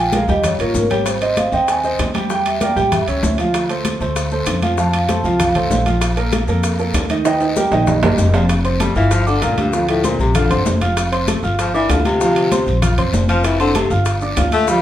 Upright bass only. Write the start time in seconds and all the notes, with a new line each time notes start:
Already playing: A#1
0.28 D#2
0.59 A1
0.74 G#1
1.52 D#2
1.99 E2
2.76 A1
3.08 C#2
3.23 D2
4.00 D2
4.47 F2
5.24 C2
5.55 C2
5.70 A#1
6.48 F2
6.94 D#2
7.71 A#1
8.02 G1
8.18 F1
8.95 G1
9.41 D2
10.19 A#1
10.50 G1
10.65 F1
11.43 G1
11.89 D2
12.66 A#1
12.98 G1
13.13 F1
13.90 G1
14.37 D2